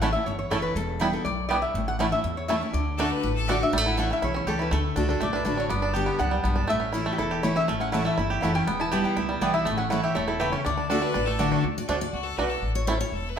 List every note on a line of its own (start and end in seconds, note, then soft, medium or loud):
0.00 0.15 A1 medium
0.00 0.24 A2 loud
0.00 0.14 E3 medium
0.00 0.10 A3 medium
0.00 0.14 A3 medium
0.00 0.08 A3 medium
0.00 0.14 C#4 loud
0.00 0.08 C#4 medium
0.00 0.11 E4 medium
0.00 0.08 E4 medium
0.00 0.13 E4 loud
0.00 0.11 C#5 medium
0.00 0.12 F#5 loud
0.00 0.11 A5 medium
0.13 0.27 C#4 soft
0.13 0.26 E4 medium
0.13 0.26 E5 medium
0.26 0.47 G1 medium
0.26 0.74 E2 medium
0.26 0.37 C#5 medium
0.39 0.50 C#5 medium
0.50 0.72 F#1 medium
0.50 0.75 E3 medium
0.50 0.60 A3 medium
0.50 0.57 A3 medium
0.50 0.75 A3 medium
0.50 0.57 C#4 medium
0.50 0.75 C#4 medium
0.50 0.60 E4 medium
0.50 0.57 E4 medium
0.50 0.76 E4 medium
0.50 0.62 A4 medium
0.50 0.60 C#5 medium
0.50 0.60 A5 loud
0.62 0.74 B4 medium
0.75 1.13 E1 loud
0.75 1.23 E2 loud
0.75 1.11 A4 medium
1.00 1.12 E3 medium
1.00 1.12 G3 medium
1.00 1.07 G3 medium
1.00 1.09 B3 medium
1.00 1.13 B3 loud
1.00 1.07 B3 medium
1.00 1.09 E4 medium
1.00 1.12 E4 loud
1.00 1.07 E4 medium
1.00 1.10 B4 medium
1.00 1.10 G5 medium
1.13 1.26 B3 soft
1.13 1.25 E4 medium
1.13 1.25 A4 medium
1.25 1.63 B1 loud
1.25 1.49 F#2 medium
1.25 1.47 D5 loud
1.49 1.74 G2 medium
1.49 1.56 G3 medium
1.49 1.59 B3 medium
1.49 1.56 B3 medium
1.49 1.59 E4 medium
1.49 1.56 E4 medium
1.49 1.59 B4 medium
1.49 1.61 D5 loud
1.49 1.59 G5 medium
1.62 1.87 E5 loud
1.74 2.12 A1 loud
1.74 2.22 A2 loud
1.88 1.98 F#5 loud
1.99 2.11 E3 medium
1.99 2.09 A3 medium
1.99 2.12 A3 medium
1.99 2.05 A3 medium
1.99 2.12 C#4 loud
1.99 2.05 C#4 medium
1.99 2.09 E4 medium
1.99 2.06 E4 medium
1.99 2.11 E4 medium
1.99 2.09 C#5 medium
1.99 2.12 F#5 medium
1.99 2.09 A5 medium
2.12 2.25 C#4 soft
2.12 2.24 E4 medium
2.12 2.35 E5 medium
2.24 2.71 E2 medium
2.24 2.62 E2 medium
2.37 2.48 C#5 medium
2.48 2.61 E3 medium
2.48 2.58 A3 medium
2.48 2.61 A3 loud
2.48 2.55 A3 medium
2.48 2.61 C#4 medium
2.48 2.55 C#4 medium
2.48 2.58 E4 medium
2.48 2.55 E4 medium
2.48 2.60 E4 loud
2.48 2.58 C#5 medium
2.48 2.72 E5 loud
2.48 2.58 A5 medium
2.61 2.74 C#4 medium
2.61 2.73 E4 medium
2.73 3.12 D2 medium
2.73 2.97 D3 loud
2.73 3.44 D5 medium
2.97 3.22 D3 medium
2.97 3.07 A3 medium
2.97 3.22 A3 loud
2.97 3.05 A3 medium
2.97 3.23 D4 loud
2.97 3.05 D4 medium
2.97 3.08 F#4 medium
2.97 3.23 F#4 loud
2.97 3.12 A4 loud
2.97 3.08 D5 medium
2.97 3.08 F#5 medium
3.11 3.35 B4 loud
3.23 3.61 A1 medium
3.23 3.70 A2 medium
3.36 3.70 A4 medium
3.47 3.60 D3 medium
3.47 3.57 A3 medium
3.47 3.60 A3 medium
3.47 3.54 A3 medium
3.47 3.61 D4 loud
3.47 3.54 D4 medium
3.47 3.57 F#4 medium
3.47 3.59 F#4 loud
3.47 3.57 D5 medium
3.47 3.56 D5 loud
3.47 3.57 F#5 medium
3.60 3.73 D4 medium
3.60 3.72 F#4 medium
3.60 3.85 E5 loud
3.73 4.11 A1 medium
3.73 4.20 A2 loud
3.73 3.78 G3 medium
3.78 3.97 A3 medium
3.86 4.20 E4 medium
3.86 3.98 F#5 loud
3.97 4.09 E3 medium
3.97 4.10 A3 loud
3.97 4.32 A3 medium
3.97 4.10 C#4 loud
3.97 4.09 E4 medium
3.97 4.10 F#5 loud
4.10 4.33 C#4 medium
4.10 4.23 C#4 soft
4.10 4.22 E4 medium
4.10 4.23 E5 loud
4.22 4.43 B1 medium
4.22 4.69 E2 medium
4.22 4.57 E4 medium
4.22 4.35 C#5 medium
4.34 4.69 C#4 medium
4.34 4.47 C#5 medium
4.47 4.68 C#2 medium
4.47 4.70 E3 medium
4.47 4.71 A3 medium
4.47 4.71 C#4 medium
4.47 4.71 E4 loud
4.47 4.72 G4 medium
4.47 4.60 A4 loud
4.59 4.71 E4 medium
4.59 4.73 B4 medium
4.71 4.90 D2 loud
4.71 4.95 D3 loud
4.71 5.06 A3 medium
4.71 5.07 A4 medium
4.96 5.17 C#2 medium
4.96 5.20 D3 loud
4.96 5.20 A3 loud
4.96 5.08 D4 medium
4.96 5.20 D4 loud
4.96 5.20 F#4 loud
5.09 5.32 D4 medium
5.09 5.21 A4 medium
5.21 5.42 B1 loud
5.21 5.68 A2 medium
5.21 5.55 A3 medium
5.21 5.34 D5 medium
5.33 5.44 D4 medium
5.33 5.59 B4 medium
5.45 5.67 A1 medium
5.45 5.69 D3 loud
5.45 5.69 A3 medium
5.45 5.56 D4 medium
5.45 5.69 D4 medium
5.45 5.70 F#4 medium
5.57 5.69 D4 medium
5.57 5.70 C#5 loud
5.69 6.08 G1 medium
5.69 6.17 G2 loud
5.69 6.05 B3 medium
5.69 6.08 D5 medium
5.82 6.17 D4 medium
5.94 6.18 D3 medium
5.94 6.19 G3 loud
5.94 6.19 B3 loud
5.94 6.29 G4 medium
5.94 6.19 G4 loud
6.06 6.41 B3 medium
6.19 6.41 C#2 medium
6.19 6.44 F#2 medium
6.19 6.54 D4 medium
6.19 6.54 F#5 loud
6.31 6.66 G3 medium
6.44 6.65 B1 medium
6.44 6.68 G2 medium
6.44 6.69 B3 medium
6.56 6.69 D4 medium
6.68 7.07 A1 loud
6.68 7.17 A2 loud
6.68 7.03 A3 medium
6.68 7.04 E5 loud
6.80 7.15 C#4 medium
6.92 7.17 E3 medium
6.92 7.18 A3 medium
6.92 7.18 C#4 loud
6.92 7.18 E4 medium
7.06 7.41 A3 medium
7.13 7.19 G4 medium
7.18 7.57 E1 medium
7.18 7.66 E2 medium
7.18 7.43 E4 medium
7.18 7.42 A4 medium
7.31 7.66 G4 medium
7.43 7.67 E3 medium
7.43 7.67 A3 medium
7.43 7.67 C#4 loud
7.43 7.92 E4 medium
7.43 7.68 E4 loud
7.43 7.55 C#5 loud
7.56 7.79 C#4 medium
7.56 7.81 E5 loud
7.68 8.06 A1 medium
7.68 8.16 A2 loud
7.68 8.03 A3 medium
7.80 8.15 C#4 medium
7.80 7.91 F#5 loud
7.92 8.17 E3 loud
7.92 8.02 A3 medium
7.92 8.17 A3 loud
7.92 8.17 C#4 loud
7.92 8.17 E4 medium
7.92 8.02 E4 medium
7.92 8.17 E4 loud
7.92 8.02 C#5 medium
7.92 8.04 F#5 loud
7.92 8.02 A5 medium
8.05 8.40 A3 medium
8.05 8.17 E5 medium
8.18 8.39 G1 medium
8.18 8.65 E2 medium
8.18 8.42 E4 medium
8.30 8.65 G4 medium
8.41 8.64 F#1 medium
8.41 8.66 E3 medium
8.41 8.52 A3 medium
8.41 8.66 A3 medium
8.41 8.67 C#4 medium
8.41 8.67 E4 medium
8.41 8.52 E4 medium
8.41 8.52 C#5 medium
8.41 8.43 F5 medium
8.41 8.54 F#5 medium
8.41 8.52 A5 medium
8.45 8.67 E4 loud
8.55 8.67 C#4 medium
8.55 8.80 G5 loud
8.67 9.05 E1 medium
8.67 9.14 E2 loud
8.67 9.02 B3 medium
8.80 9.14 E4 medium
8.80 8.91 A5 loud
8.92 9.15 E3 loud
8.92 9.16 G3 medium
8.92 9.01 B3 medium
8.92 9.16 B3 medium
8.92 9.01 E4 medium
8.92 9.16 E4 loud
8.92 9.27 G4 medium
8.92 9.01 B4 medium
8.92 9.02 G5 medium
8.92 9.04 A5 loud
9.04 9.39 B3 medium
9.04 9.16 G5 medium
9.16 9.38 C#2 medium
9.16 9.64 B2 medium
9.16 9.51 E4 medium
9.29 9.63 G3 medium
9.41 9.62 B1 medium
9.41 9.65 E3 medium
9.41 9.65 G3 medium
9.41 9.51 B3 medium
9.41 9.66 B3 medium
9.41 9.65 B3 loud
9.41 9.51 E4 medium
9.41 9.65 E4 loud
9.41 9.51 B4 medium
9.41 9.53 D5 loud
9.41 9.51 G5 medium
9.54 9.66 E4 medium
9.54 9.79 E5 loud
9.65 10.04 A1 loud
9.65 10.13 A2 loud
9.65 10.06 A3 medium
9.77 10.13 C#4 medium
9.77 9.89 F#5 loud
9.90 10.15 E3 medium
9.90 10.00 A3 medium
9.90 10.15 A3 loud
9.90 10.15 C#4 loud
9.90 10.26 E4 medium
9.90 10.00 E4 medium
9.90 10.15 E4 loud
9.90 10.00 C#5 medium
9.90 10.02 F#5 loud
9.90 10.00 A5 medium
10.04 10.38 G4 medium
10.04 10.15 E5 loud
10.15 10.54 E1 medium
10.15 10.40 B2 medium
10.15 11.27 A3 medium
10.15 10.28 C#5 medium
10.28 10.62 E4 medium
10.28 10.41 A4 medium
10.40 10.64 C#3 medium
10.40 10.49 A3 medium
10.40 10.49 E4 medium
10.40 10.65 G4 medium
10.40 10.52 B4 loud
10.40 10.50 C#5 medium
10.40 10.50 A5 loud
10.52 10.64 C#4 medium
10.52 10.65 C#5 loud
10.65 11.03 D2 medium
10.65 10.89 D3 loud
10.65 10.76 D4 medium
10.65 11.36 D5 medium
10.77 10.89 D4 medium
10.89 11.14 D3 medium
10.89 10.99 A3 medium
10.89 11.14 A3 loud
10.89 11.01 D4 medium
10.89 11.14 D4 medium
10.89 10.99 F#4 medium
10.89 11.14 F#4 loud
10.89 11.04 A4 loud
10.89 10.99 D5 medium
10.89 10.99 F#5 loud
11.02 11.13 D4 medium
11.02 11.27 B4 loud
11.14 11.53 A1 medium
11.14 11.62 A2 medium
11.14 11.38 D4 medium
11.26 11.62 A3 medium
11.26 11.63 A4 medium
11.39 11.63 D3 loud
11.39 11.48 A3 medium
11.39 11.63 A3 loud
11.39 11.51 D4 medium
11.39 11.63 D4 medium
11.39 11.48 F#4 medium
11.39 11.64 F#4 loud
11.39 11.49 D5 loud
11.39 11.49 F#5 loud
11.52 11.64 D4 medium
11.64 11.83 D2 loud
11.78 11.88 D5 medium
11.88 12.10 D2 medium
11.88 11.97 A3 medium
11.88 11.95 A3 medium
11.88 11.95 D4 medium
11.88 11.98 F#4 medium
11.88 12.01 C5 medium
11.88 11.98 D5 medium
11.88 11.98 F#5 medium
12.01 12.13 D5 medium
12.13 12.34 C#2 medium
12.13 12.25 F#4 medium
12.24 12.38 A4 medium
12.37 12.59 B1 medium
12.37 12.47 A3 medium
12.37 12.44 A3 medium
12.37 12.44 D4 medium
12.37 12.48 F#4 medium
12.37 12.51 B4 loud
12.37 12.48 D5 medium
12.37 12.48 F#5 medium
12.50 12.69 A4 medium
12.62 13.01 A1 medium
12.75 12.87 C#5 medium
12.87 12.97 A3 medium
12.87 12.94 A3 medium
12.87 12.94 C#4 medium
12.87 12.97 E4 medium
12.87 12.94 E4 medium
12.87 13.00 C5 medium
12.87 12.97 C#5 medium
12.87 12.97 A5 medium
13.01 13.12 C#5 loud
13.12 13.39 E1 medium
13.12 13.31 A4 medium
13.29 13.39 B4 medium
13.36 13.39 A3 medium